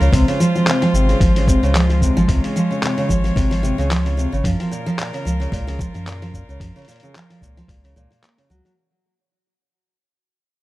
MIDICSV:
0, 0, Header, 1, 5, 480
1, 0, Start_track
1, 0, Tempo, 540541
1, 107, Time_signature, 4, 2, 24, 8
1, 9431, End_track
2, 0, Start_track
2, 0, Title_t, "String quartet"
2, 0, Program_c, 0, 48
2, 0, Note_on_c, 0, 65, 74
2, 106, Note_on_c, 0, 56, 86
2, 113, Note_on_c, 0, 72, 85
2, 2011, Note_off_c, 0, 72, 0
2, 2035, Note_on_c, 0, 73, 88
2, 3911, Note_off_c, 0, 56, 0
2, 3916, Note_off_c, 0, 65, 0
2, 3932, Note_off_c, 0, 73, 0
2, 3950, Note_on_c, 0, 65, 71
2, 3951, Note_on_c, 0, 70, 89
2, 7753, Note_off_c, 0, 65, 0
2, 7754, Note_off_c, 0, 70, 0
2, 9431, End_track
3, 0, Start_track
3, 0, Title_t, "Steel-string acoustic guitar"
3, 0, Program_c, 1, 25
3, 5, Note_on_c, 1, 49, 73
3, 98, Note_off_c, 1, 49, 0
3, 110, Note_on_c, 1, 48, 88
3, 230, Note_off_c, 1, 48, 0
3, 248, Note_on_c, 1, 49, 77
3, 340, Note_off_c, 1, 49, 0
3, 356, Note_on_c, 1, 53, 84
3, 480, Note_off_c, 1, 53, 0
3, 493, Note_on_c, 1, 53, 83
3, 582, Note_off_c, 1, 53, 0
3, 598, Note_on_c, 1, 48, 81
3, 721, Note_off_c, 1, 48, 0
3, 728, Note_on_c, 1, 53, 101
3, 820, Note_off_c, 1, 53, 0
3, 837, Note_on_c, 1, 48, 74
3, 960, Note_off_c, 1, 48, 0
3, 968, Note_on_c, 1, 49, 84
3, 1060, Note_off_c, 1, 49, 0
3, 1078, Note_on_c, 1, 53, 86
3, 1194, Note_off_c, 1, 53, 0
3, 1213, Note_on_c, 1, 49, 81
3, 1302, Note_off_c, 1, 49, 0
3, 1315, Note_on_c, 1, 48, 84
3, 1432, Note_off_c, 1, 48, 0
3, 1447, Note_on_c, 1, 49, 79
3, 1539, Note_off_c, 1, 49, 0
3, 1554, Note_on_c, 1, 53, 81
3, 1674, Note_off_c, 1, 53, 0
3, 1684, Note_on_c, 1, 53, 81
3, 1778, Note_off_c, 1, 53, 0
3, 1792, Note_on_c, 1, 48, 79
3, 1918, Note_off_c, 1, 48, 0
3, 1925, Note_on_c, 1, 53, 110
3, 2018, Note_off_c, 1, 53, 0
3, 2032, Note_on_c, 1, 48, 83
3, 2157, Note_off_c, 1, 48, 0
3, 2166, Note_on_c, 1, 49, 73
3, 2259, Note_off_c, 1, 49, 0
3, 2273, Note_on_c, 1, 53, 89
3, 2391, Note_off_c, 1, 53, 0
3, 2404, Note_on_c, 1, 49, 78
3, 2498, Note_off_c, 1, 49, 0
3, 2507, Note_on_c, 1, 48, 82
3, 2628, Note_off_c, 1, 48, 0
3, 2642, Note_on_c, 1, 49, 87
3, 2737, Note_off_c, 1, 49, 0
3, 2745, Note_on_c, 1, 53, 77
3, 2867, Note_off_c, 1, 53, 0
3, 2878, Note_on_c, 1, 53, 83
3, 2975, Note_off_c, 1, 53, 0
3, 2983, Note_on_c, 1, 48, 87
3, 3113, Note_off_c, 1, 48, 0
3, 3117, Note_on_c, 1, 53, 102
3, 3214, Note_off_c, 1, 53, 0
3, 3224, Note_on_c, 1, 48, 87
3, 3353, Note_off_c, 1, 48, 0
3, 3358, Note_on_c, 1, 49, 83
3, 3455, Note_off_c, 1, 49, 0
3, 3465, Note_on_c, 1, 53, 84
3, 3587, Note_off_c, 1, 53, 0
3, 3601, Note_on_c, 1, 49, 76
3, 3697, Note_off_c, 1, 49, 0
3, 3705, Note_on_c, 1, 48, 76
3, 3827, Note_off_c, 1, 48, 0
3, 3839, Note_on_c, 1, 49, 79
3, 3936, Note_off_c, 1, 49, 0
3, 3951, Note_on_c, 1, 53, 87
3, 4073, Note_off_c, 1, 53, 0
3, 4084, Note_on_c, 1, 53, 74
3, 4178, Note_off_c, 1, 53, 0
3, 4186, Note_on_c, 1, 46, 84
3, 4315, Note_off_c, 1, 46, 0
3, 4319, Note_on_c, 1, 53, 105
3, 4415, Note_off_c, 1, 53, 0
3, 4427, Note_on_c, 1, 46, 84
3, 4555, Note_off_c, 1, 46, 0
3, 4559, Note_on_c, 1, 49, 80
3, 4656, Note_off_c, 1, 49, 0
3, 4663, Note_on_c, 1, 53, 75
3, 4786, Note_off_c, 1, 53, 0
3, 4795, Note_on_c, 1, 49, 80
3, 4893, Note_off_c, 1, 49, 0
3, 4901, Note_on_c, 1, 46, 95
3, 5025, Note_off_c, 1, 46, 0
3, 5038, Note_on_c, 1, 49, 84
3, 5135, Note_off_c, 1, 49, 0
3, 5142, Note_on_c, 1, 53, 81
3, 5267, Note_off_c, 1, 53, 0
3, 5277, Note_on_c, 1, 53, 81
3, 5375, Note_off_c, 1, 53, 0
3, 5387, Note_on_c, 1, 46, 80
3, 5515, Note_off_c, 1, 46, 0
3, 5524, Note_on_c, 1, 53, 108
3, 5618, Note_off_c, 1, 53, 0
3, 5628, Note_on_c, 1, 46, 75
3, 5755, Note_off_c, 1, 46, 0
3, 5763, Note_on_c, 1, 49, 84
3, 5857, Note_off_c, 1, 49, 0
3, 5867, Note_on_c, 1, 53, 85
3, 5988, Note_off_c, 1, 53, 0
3, 6002, Note_on_c, 1, 49, 79
3, 6097, Note_off_c, 1, 49, 0
3, 6110, Note_on_c, 1, 46, 87
3, 6230, Note_off_c, 1, 46, 0
3, 6243, Note_on_c, 1, 49, 87
3, 6337, Note_off_c, 1, 49, 0
3, 6355, Note_on_c, 1, 53, 84
3, 6473, Note_off_c, 1, 53, 0
3, 6483, Note_on_c, 1, 53, 81
3, 6578, Note_off_c, 1, 53, 0
3, 6589, Note_on_c, 1, 46, 72
3, 6716, Note_off_c, 1, 46, 0
3, 6725, Note_on_c, 1, 53, 106
3, 6819, Note_off_c, 1, 53, 0
3, 6828, Note_on_c, 1, 46, 81
3, 6956, Note_off_c, 1, 46, 0
3, 6962, Note_on_c, 1, 49, 79
3, 7057, Note_off_c, 1, 49, 0
3, 7069, Note_on_c, 1, 46, 103
3, 7187, Note_off_c, 1, 46, 0
3, 7198, Note_on_c, 1, 46, 80
3, 7295, Note_off_c, 1, 46, 0
3, 7306, Note_on_c, 1, 58, 79
3, 7427, Note_off_c, 1, 58, 0
3, 7442, Note_on_c, 1, 49, 79
3, 7542, Note_off_c, 1, 49, 0
3, 7547, Note_on_c, 1, 54, 93
3, 7671, Note_off_c, 1, 54, 0
3, 7682, Note_on_c, 1, 54, 74
3, 7742, Note_off_c, 1, 54, 0
3, 9431, End_track
4, 0, Start_track
4, 0, Title_t, "Sub bass"
4, 0, Program_c, 2, 38
4, 4, Note_on_c, 2, 37, 88
4, 84, Note_off_c, 2, 37, 0
4, 109, Note_on_c, 2, 37, 106
4, 212, Note_off_c, 2, 37, 0
4, 827, Note_on_c, 2, 32, 109
4, 1019, Note_off_c, 2, 32, 0
4, 1069, Note_on_c, 2, 32, 85
4, 1393, Note_off_c, 2, 32, 0
4, 1442, Note_on_c, 2, 37, 77
4, 1873, Note_off_c, 2, 37, 0
4, 1922, Note_on_c, 2, 32, 104
4, 2003, Note_off_c, 2, 32, 0
4, 2026, Note_on_c, 2, 37, 113
4, 2130, Note_off_c, 2, 37, 0
4, 2745, Note_on_c, 2, 32, 102
4, 2938, Note_off_c, 2, 32, 0
4, 2984, Note_on_c, 2, 32, 86
4, 3311, Note_off_c, 2, 32, 0
4, 3360, Note_on_c, 2, 37, 79
4, 3792, Note_off_c, 2, 37, 0
4, 3842, Note_on_c, 2, 32, 106
4, 3923, Note_off_c, 2, 32, 0
4, 3942, Note_on_c, 2, 42, 108
4, 4048, Note_off_c, 2, 42, 0
4, 4668, Note_on_c, 2, 37, 105
4, 4860, Note_off_c, 2, 37, 0
4, 4902, Note_on_c, 2, 37, 86
4, 5230, Note_off_c, 2, 37, 0
4, 5278, Note_on_c, 2, 42, 75
4, 5711, Note_off_c, 2, 42, 0
4, 5760, Note_on_c, 2, 37, 98
4, 5843, Note_off_c, 2, 37, 0
4, 5861, Note_on_c, 2, 42, 108
4, 5968, Note_off_c, 2, 42, 0
4, 6583, Note_on_c, 2, 37, 106
4, 6777, Note_off_c, 2, 37, 0
4, 6820, Note_on_c, 2, 37, 88
4, 7056, Note_off_c, 2, 37, 0
4, 7062, Note_on_c, 2, 37, 107
4, 7168, Note_off_c, 2, 37, 0
4, 7546, Note_on_c, 2, 37, 111
4, 7651, Note_off_c, 2, 37, 0
4, 9431, End_track
5, 0, Start_track
5, 0, Title_t, "Drums"
5, 14, Note_on_c, 9, 46, 27
5, 18, Note_on_c, 9, 69, 33
5, 103, Note_off_c, 9, 46, 0
5, 106, Note_off_c, 9, 69, 0
5, 110, Note_on_c, 9, 36, 113
5, 120, Note_on_c, 9, 46, 71
5, 123, Note_on_c, 9, 69, 50
5, 199, Note_off_c, 9, 36, 0
5, 208, Note_off_c, 9, 46, 0
5, 212, Note_off_c, 9, 69, 0
5, 252, Note_on_c, 9, 46, 45
5, 255, Note_on_c, 9, 69, 25
5, 340, Note_off_c, 9, 46, 0
5, 344, Note_off_c, 9, 69, 0
5, 359, Note_on_c, 9, 69, 81
5, 448, Note_off_c, 9, 69, 0
5, 491, Note_on_c, 9, 69, 32
5, 580, Note_off_c, 9, 69, 0
5, 595, Note_on_c, 9, 39, 100
5, 595, Note_on_c, 9, 46, 65
5, 599, Note_on_c, 9, 69, 43
5, 684, Note_off_c, 9, 39, 0
5, 684, Note_off_c, 9, 46, 0
5, 687, Note_off_c, 9, 69, 0
5, 729, Note_on_c, 9, 46, 42
5, 733, Note_on_c, 9, 69, 24
5, 818, Note_off_c, 9, 46, 0
5, 822, Note_off_c, 9, 69, 0
5, 840, Note_on_c, 9, 69, 85
5, 929, Note_off_c, 9, 69, 0
5, 970, Note_on_c, 9, 46, 30
5, 974, Note_on_c, 9, 69, 31
5, 1059, Note_off_c, 9, 46, 0
5, 1062, Note_off_c, 9, 69, 0
5, 1070, Note_on_c, 9, 36, 127
5, 1075, Note_on_c, 9, 46, 67
5, 1078, Note_on_c, 9, 69, 48
5, 1159, Note_off_c, 9, 36, 0
5, 1164, Note_off_c, 9, 46, 0
5, 1167, Note_off_c, 9, 69, 0
5, 1211, Note_on_c, 9, 46, 50
5, 1214, Note_on_c, 9, 69, 24
5, 1299, Note_off_c, 9, 46, 0
5, 1303, Note_off_c, 9, 69, 0
5, 1310, Note_on_c, 9, 36, 116
5, 1320, Note_on_c, 9, 69, 88
5, 1399, Note_off_c, 9, 36, 0
5, 1409, Note_off_c, 9, 69, 0
5, 1452, Note_on_c, 9, 46, 30
5, 1456, Note_on_c, 9, 69, 33
5, 1541, Note_off_c, 9, 46, 0
5, 1544, Note_off_c, 9, 69, 0
5, 1554, Note_on_c, 9, 39, 89
5, 1554, Note_on_c, 9, 46, 69
5, 1558, Note_on_c, 9, 69, 42
5, 1643, Note_off_c, 9, 39, 0
5, 1643, Note_off_c, 9, 46, 0
5, 1647, Note_off_c, 9, 69, 0
5, 1691, Note_on_c, 9, 46, 41
5, 1695, Note_on_c, 9, 69, 23
5, 1780, Note_off_c, 9, 46, 0
5, 1783, Note_off_c, 9, 69, 0
5, 1788, Note_on_c, 9, 36, 65
5, 1799, Note_on_c, 9, 69, 82
5, 1877, Note_off_c, 9, 36, 0
5, 1888, Note_off_c, 9, 69, 0
5, 1932, Note_on_c, 9, 69, 35
5, 2021, Note_off_c, 9, 69, 0
5, 2027, Note_on_c, 9, 36, 114
5, 2031, Note_on_c, 9, 46, 73
5, 2035, Note_on_c, 9, 69, 46
5, 2116, Note_off_c, 9, 36, 0
5, 2120, Note_off_c, 9, 46, 0
5, 2123, Note_off_c, 9, 69, 0
5, 2168, Note_on_c, 9, 46, 50
5, 2172, Note_on_c, 9, 69, 22
5, 2257, Note_off_c, 9, 46, 0
5, 2260, Note_off_c, 9, 69, 0
5, 2277, Note_on_c, 9, 69, 80
5, 2366, Note_off_c, 9, 69, 0
5, 2412, Note_on_c, 9, 69, 31
5, 2501, Note_off_c, 9, 69, 0
5, 2513, Note_on_c, 9, 39, 100
5, 2513, Note_on_c, 9, 46, 65
5, 2517, Note_on_c, 9, 69, 43
5, 2602, Note_off_c, 9, 39, 0
5, 2602, Note_off_c, 9, 46, 0
5, 2606, Note_off_c, 9, 69, 0
5, 2646, Note_on_c, 9, 46, 44
5, 2650, Note_on_c, 9, 69, 20
5, 2735, Note_off_c, 9, 46, 0
5, 2739, Note_off_c, 9, 69, 0
5, 2746, Note_on_c, 9, 36, 60
5, 2755, Note_on_c, 9, 69, 82
5, 2835, Note_off_c, 9, 36, 0
5, 2844, Note_off_c, 9, 69, 0
5, 2890, Note_on_c, 9, 46, 30
5, 2893, Note_on_c, 9, 69, 32
5, 2978, Note_off_c, 9, 46, 0
5, 2982, Note_off_c, 9, 69, 0
5, 2985, Note_on_c, 9, 36, 122
5, 2995, Note_on_c, 9, 46, 70
5, 2998, Note_on_c, 9, 69, 46
5, 3074, Note_off_c, 9, 36, 0
5, 3084, Note_off_c, 9, 46, 0
5, 3087, Note_off_c, 9, 69, 0
5, 3130, Note_on_c, 9, 46, 51
5, 3134, Note_on_c, 9, 69, 24
5, 3219, Note_off_c, 9, 46, 0
5, 3222, Note_off_c, 9, 69, 0
5, 3234, Note_on_c, 9, 69, 77
5, 3323, Note_off_c, 9, 69, 0
5, 3370, Note_on_c, 9, 46, 31
5, 3373, Note_on_c, 9, 69, 31
5, 3459, Note_off_c, 9, 46, 0
5, 3462, Note_off_c, 9, 69, 0
5, 3472, Note_on_c, 9, 39, 94
5, 3472, Note_on_c, 9, 46, 72
5, 3476, Note_on_c, 9, 69, 43
5, 3561, Note_off_c, 9, 39, 0
5, 3561, Note_off_c, 9, 46, 0
5, 3565, Note_off_c, 9, 69, 0
5, 3607, Note_on_c, 9, 46, 42
5, 3610, Note_on_c, 9, 69, 23
5, 3696, Note_off_c, 9, 46, 0
5, 3699, Note_off_c, 9, 69, 0
5, 3717, Note_on_c, 9, 69, 68
5, 3806, Note_off_c, 9, 69, 0
5, 3852, Note_on_c, 9, 69, 32
5, 3941, Note_off_c, 9, 69, 0
5, 3943, Note_on_c, 9, 36, 105
5, 3951, Note_on_c, 9, 46, 74
5, 3955, Note_on_c, 9, 69, 44
5, 4032, Note_off_c, 9, 36, 0
5, 4040, Note_off_c, 9, 46, 0
5, 4044, Note_off_c, 9, 69, 0
5, 4086, Note_on_c, 9, 46, 48
5, 4089, Note_on_c, 9, 69, 21
5, 4175, Note_off_c, 9, 46, 0
5, 4178, Note_off_c, 9, 69, 0
5, 4193, Note_on_c, 9, 69, 79
5, 4282, Note_off_c, 9, 69, 0
5, 4328, Note_on_c, 9, 69, 33
5, 4417, Note_off_c, 9, 69, 0
5, 4431, Note_on_c, 9, 39, 100
5, 4431, Note_on_c, 9, 46, 67
5, 4434, Note_on_c, 9, 69, 42
5, 4519, Note_off_c, 9, 39, 0
5, 4519, Note_off_c, 9, 46, 0
5, 4523, Note_off_c, 9, 69, 0
5, 4566, Note_on_c, 9, 46, 48
5, 4570, Note_on_c, 9, 69, 21
5, 4655, Note_off_c, 9, 46, 0
5, 4659, Note_off_c, 9, 69, 0
5, 4676, Note_on_c, 9, 69, 78
5, 4765, Note_off_c, 9, 69, 0
5, 4809, Note_on_c, 9, 46, 34
5, 4812, Note_on_c, 9, 69, 33
5, 4897, Note_off_c, 9, 46, 0
5, 4901, Note_off_c, 9, 69, 0
5, 4902, Note_on_c, 9, 36, 118
5, 4914, Note_on_c, 9, 46, 73
5, 4918, Note_on_c, 9, 69, 45
5, 4991, Note_off_c, 9, 36, 0
5, 5003, Note_off_c, 9, 46, 0
5, 5006, Note_off_c, 9, 69, 0
5, 5048, Note_on_c, 9, 46, 52
5, 5051, Note_on_c, 9, 69, 22
5, 5137, Note_off_c, 9, 46, 0
5, 5140, Note_off_c, 9, 69, 0
5, 5142, Note_on_c, 9, 36, 112
5, 5155, Note_on_c, 9, 69, 81
5, 5231, Note_off_c, 9, 36, 0
5, 5244, Note_off_c, 9, 69, 0
5, 5285, Note_on_c, 9, 46, 33
5, 5288, Note_on_c, 9, 69, 30
5, 5374, Note_off_c, 9, 46, 0
5, 5377, Note_off_c, 9, 69, 0
5, 5391, Note_on_c, 9, 39, 94
5, 5391, Note_on_c, 9, 46, 69
5, 5394, Note_on_c, 9, 69, 45
5, 5479, Note_off_c, 9, 39, 0
5, 5479, Note_off_c, 9, 46, 0
5, 5483, Note_off_c, 9, 69, 0
5, 5526, Note_on_c, 9, 46, 46
5, 5529, Note_on_c, 9, 69, 23
5, 5615, Note_off_c, 9, 46, 0
5, 5618, Note_off_c, 9, 69, 0
5, 5621, Note_on_c, 9, 36, 63
5, 5635, Note_on_c, 9, 69, 75
5, 5710, Note_off_c, 9, 36, 0
5, 5723, Note_off_c, 9, 69, 0
5, 5771, Note_on_c, 9, 69, 34
5, 5859, Note_off_c, 9, 69, 0
5, 5861, Note_on_c, 9, 36, 114
5, 5870, Note_on_c, 9, 46, 78
5, 5873, Note_on_c, 9, 69, 48
5, 5950, Note_off_c, 9, 36, 0
5, 5959, Note_off_c, 9, 46, 0
5, 5962, Note_off_c, 9, 69, 0
5, 6002, Note_on_c, 9, 46, 23
5, 6006, Note_on_c, 9, 69, 22
5, 6026, Note_off_c, 9, 46, 0
5, 6026, Note_on_c, 9, 46, 26
5, 6056, Note_off_c, 9, 46, 0
5, 6056, Note_on_c, 9, 46, 28
5, 6080, Note_off_c, 9, 46, 0
5, 6080, Note_on_c, 9, 46, 31
5, 6094, Note_off_c, 9, 69, 0
5, 6109, Note_off_c, 9, 46, 0
5, 6109, Note_on_c, 9, 46, 35
5, 6112, Note_on_c, 9, 69, 79
5, 6142, Note_off_c, 9, 46, 0
5, 6142, Note_on_c, 9, 46, 36
5, 6179, Note_off_c, 9, 46, 0
5, 6179, Note_on_c, 9, 46, 41
5, 6201, Note_off_c, 9, 69, 0
5, 6215, Note_off_c, 9, 46, 0
5, 6215, Note_on_c, 9, 46, 44
5, 6253, Note_on_c, 9, 69, 32
5, 6304, Note_off_c, 9, 46, 0
5, 6342, Note_off_c, 9, 69, 0
5, 6352, Note_on_c, 9, 39, 103
5, 6352, Note_on_c, 9, 46, 66
5, 6356, Note_on_c, 9, 69, 46
5, 6441, Note_off_c, 9, 39, 0
5, 6441, Note_off_c, 9, 46, 0
5, 6445, Note_off_c, 9, 69, 0
5, 6488, Note_on_c, 9, 46, 50
5, 6491, Note_on_c, 9, 69, 21
5, 6577, Note_off_c, 9, 46, 0
5, 6580, Note_off_c, 9, 69, 0
5, 6582, Note_on_c, 9, 36, 57
5, 6598, Note_on_c, 9, 69, 85
5, 6671, Note_off_c, 9, 36, 0
5, 6687, Note_off_c, 9, 69, 0
5, 6726, Note_on_c, 9, 46, 34
5, 6730, Note_on_c, 9, 69, 35
5, 6815, Note_off_c, 9, 46, 0
5, 6819, Note_off_c, 9, 69, 0
5, 6822, Note_on_c, 9, 36, 121
5, 6830, Note_on_c, 9, 46, 71
5, 6833, Note_on_c, 9, 69, 43
5, 6911, Note_off_c, 9, 36, 0
5, 6919, Note_off_c, 9, 46, 0
5, 6922, Note_off_c, 9, 69, 0
5, 6970, Note_on_c, 9, 46, 53
5, 6973, Note_on_c, 9, 69, 23
5, 7059, Note_off_c, 9, 46, 0
5, 7062, Note_off_c, 9, 69, 0
5, 7076, Note_on_c, 9, 69, 83
5, 7165, Note_off_c, 9, 69, 0
5, 7209, Note_on_c, 9, 46, 34
5, 7212, Note_on_c, 9, 69, 33
5, 7297, Note_off_c, 9, 46, 0
5, 7301, Note_off_c, 9, 69, 0
5, 7313, Note_on_c, 9, 39, 107
5, 7313, Note_on_c, 9, 46, 70
5, 7316, Note_on_c, 9, 69, 43
5, 7401, Note_off_c, 9, 39, 0
5, 7401, Note_off_c, 9, 46, 0
5, 7405, Note_off_c, 9, 69, 0
5, 7446, Note_on_c, 9, 46, 45
5, 7449, Note_on_c, 9, 69, 21
5, 7535, Note_off_c, 9, 46, 0
5, 7538, Note_off_c, 9, 69, 0
5, 7556, Note_on_c, 9, 69, 79
5, 7645, Note_off_c, 9, 69, 0
5, 7689, Note_on_c, 9, 46, 32
5, 7692, Note_on_c, 9, 69, 31
5, 7778, Note_off_c, 9, 46, 0
5, 7781, Note_off_c, 9, 69, 0
5, 9431, End_track
0, 0, End_of_file